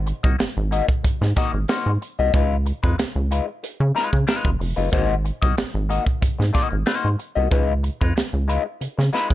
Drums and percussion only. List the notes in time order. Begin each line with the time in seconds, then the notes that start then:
0.07 closed hi-hat
0.24 kick
0.39 snare, closed hi-hat
0.72 closed hi-hat
0.89 kick
1.04 kick, closed hi-hat
1.22 snare
1.36 kick, snare, closed hi-hat
1.68 snare, closed hi-hat
2.02 closed hi-hat
2.34 kick, closed hi-hat
2.66 closed hi-hat
2.84 kick
2.99 snare, closed hi-hat
3.32 closed hi-hat
3.64 closed hi-hat
3.96 snare, closed hi-hat
4.13 kick
4.28 snare, closed hi-hat
4.45 kick
4.61 open hi-hat
4.93 kick, closed hi-hat
5.26 closed hi-hat
5.42 kick
5.58 snare, closed hi-hat
5.90 closed hi-hat
6.06 kick
6.22 kick, closed hi-hat
6.41 snare
6.54 kick, snare, closed hi-hat
6.86 snare, closed hi-hat
7.19 closed hi-hat
7.51 kick, closed hi-hat
7.84 closed hi-hat
8.01 kick
8.17 snare, closed hi-hat
8.50 closed hi-hat
8.81 closed hi-hat
8.99 snare
9.13 snare, closed hi-hat
9.30 kick